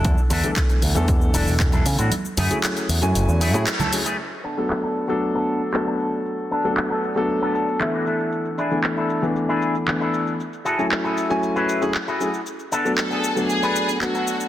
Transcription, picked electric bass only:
0.05 0.15 E2 medium
0.30 0.41 E2 loud
0.82 0.93 D2 loud
0.95 1.30 E2 medium
1.34 1.44 E1 loud
1.47 1.81 E1 loud
1.86 1.96 C#3 loud
1.99 2.09 A2 loud
2.38 2.48 F#2 loud
2.89 2.99 E2 loud
3.03 3.12 F#2 loud
3.15 3.25 F#1 medium
3.28 3.54 E2 loud
3.54 3.64 A2 medium

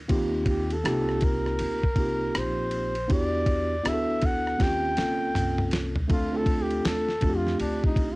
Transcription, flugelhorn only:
0.49 0.74 G4 medium
0.73 1.25 A4 medium
1.24 2.40 A#4 medium
2.38 3.12 C5 medium
3.13 3.90 D5 medium
3.88 4.27 E5 medium
4.26 4.64 F#5 medium
4.63 5.74 G5 loud
6.13 6.39 F4 medium
6.37 6.64 A4 medium
6.62 6.89 G4 medium
6.87 7.38 A4 loud
7.36 7.60 F4 medium
7.61 7.84 D4 medium
7.86 8.14 D#4 medium
8.12 8.16 F4 medium

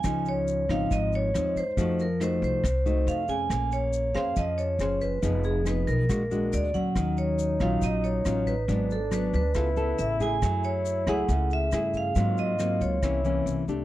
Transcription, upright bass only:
0.04 0.65 C#2 medium
0.69 0.89 G#1 medium
0.91 1.31 G#1 medium
1.35 1.75 D#2 medium
1.77 2.38 F2 medium
2.42 2.62 C2 loud
2.64 3.04 C2 medium
3.07 3.47 F2 medium
3.50 4.11 A#1 medium
4.15 4.35 F2 medium
4.37 4.77 F2 medium
4.79 5.19 F#1 medium
5.22 5.84 F1 medium
5.88 6.09 B1 medium
6.09 6.50 A#1 medium
6.53 6.93 D2 medium
6.96 7.57 D#2 medium
7.60 7.81 A#1 medium
7.82 8.22 A#1 medium
8.26 8.66 A1 medium
8.68 9.30 G#1 loud
9.34 9.55 D2 medium
9.55 9.96 C#2 medium
9.99 10.39 A1 medium
10.42 11.04 F#2 medium
11.07 11.27 C#2 medium
11.29 11.69 C#2 medium
11.72 12.13 G2 medium
12.16 12.77 G#2 medium
12.81 13.02 C#2 medium
13.02 13.43 C2 medium
13.46 13.85 C2 medium

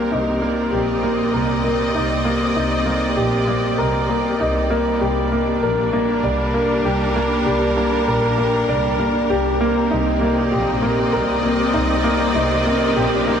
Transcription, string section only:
0.00 5.84 C4 medium
0.00 9.61 G4 medium
0.00 1.77 A#4 medium
0.36 6.66 D5 medium
0.78 4.70 D#5 medium
4.71 9.61 G3 medium
5.22 9.61 D4 medium
6.04 11.46 A#4 medium
9.60 13.40 C4 medium
9.93 13.40 G4 medium
10.09 13.40 D5 medium
10.36 13.40 D#5 medium

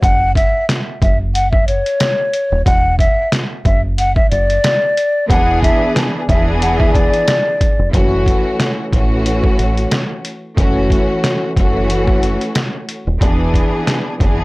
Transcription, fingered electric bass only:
0.03 0.43 F#1 loud
1.02 1.82 F#1 medium
2.52 2.63 D#1 medium
2.66 3.07 E1 loud
3.66 4.17 F#1 loud
4.32 4.57 F#1 medium
5.30 5.70 E1 loud
6.29 7.09 E1 medium
7.79 7.91 F1 medium
7.94 8.34 F#1 loud
8.93 9.45 A1 medium
9.59 9.85 A1 medium
10.58 10.98 F#1 loud
11.57 12.37 F#1 medium
13.07 13.18 D#1 medium
13.22 13.62 E1 loud
14.21 14.44 F#1 loud

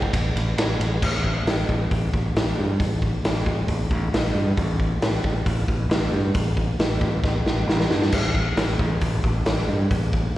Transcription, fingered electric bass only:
0.13 0.32 A1 medium
0.36 0.54 A1 medium
0.57 0.76 A1 medium
0.80 0.98 A1 medium
1.03 1.37 A1 medium
1.45 1.63 A1 medium
1.69 1.86 A1 medium
1.91 2.08 A1 medium
2.14 2.31 A1 medium
2.36 2.53 A1 medium
2.59 2.76 G2 medium
2.80 3.14 A1 medium
3.24 3.41 A1 medium
3.47 3.64 A1 medium
3.69 3.86 A1 medium
3.91 4.08 A1 medium
4.13 4.30 A1 medium
4.34 4.52 G2 medium
4.57 4.92 A1 medium
5.03 5.19 A1 medium
5.24 5.41 A1 medium
5.46 5.63 A1 medium
5.68 5.85 A1 medium
5.89 6.07 A1 medium
6.11 6.29 G2 medium
6.35 6.69 A1 medium
6.79 6.97 A1 medium
7.01 7.19 A1 loud
7.24 7.41 A1 medium
7.46 7.63 A1 medium
7.67 7.85 A1 medium
7.90 8.08 G2 medium
8.13 8.47 A1 medium
8.57 8.75 A1 medium
8.79 8.97 A1 medium
9.01 9.19 A1 loud
9.24 9.41 A1 medium
9.45 9.63 A1 medium
9.68 9.86 G2 medium
9.91 10.25 A1 loud

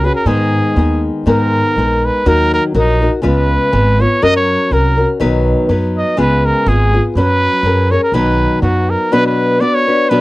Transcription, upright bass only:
0.26 0.58 G#2 medium
0.76 1.09 D#2 medium
1.26 1.59 G#2 medium
1.76 2.08 A#1 medium
2.26 2.58 D#2 medium
2.75 3.06 A#1 loud
3.24 3.56 C#2 medium
3.73 4.05 G#1 loud
4.23 4.54 F#2 medium
4.71 5.03 C2 medium
5.20 5.52 B1 medium
5.69 6.01 F#2 medium
6.18 6.50 C#2 medium
6.66 6.98 G#1 loud
7.15 7.47 F#2 medium
7.63 7.95 F#2 medium
8.12 8.45 B1 medium
8.62 8.95 F#2 medium

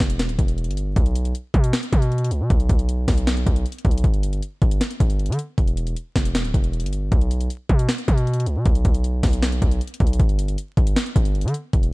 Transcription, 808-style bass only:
0.00 0.30 E1 loud
0.29 0.38 D1 loud
0.39 0.69 E1 loud
0.68 0.95 G1 loud
0.96 1.33 B1 loud
1.54 1.73 B2 loud
1.93 2.32 B2 loud
2.31 2.42 C#2 medium
2.41 2.50 B2 loud
2.50 2.69 B1 loud
2.69 3.06 B1 loud
3.08 3.45 B1 loud
3.46 3.65 B1 loud
3.85 4.03 B1 loud
4.04 4.41 G1 loud
4.62 4.80 G1 loud
5.00 5.31 G1 loud
5.29 5.38 D3 loud
5.58 5.95 E1 loud
6.16 6.46 E1 loud
6.44 6.54 D1 loud
6.54 6.84 E1 loud
6.83 7.10 G1 loud
7.12 7.49 B1 loud
7.69 7.88 B2 loud
8.08 8.48 B2 loud
8.46 8.58 C#2 loud
8.56 8.65 B2 loud
8.66 8.84 B1 loud
8.85 9.22 B1 loud
9.23 9.60 B1 loud
9.62 9.80 B1 loud
10.00 10.19 B1 loud
10.20 10.56 G1 loud
10.77 10.96 G1 loud
11.16 11.46 G1 loud
11.44 11.54 D3 loud
11.73 11.93 E1 loud

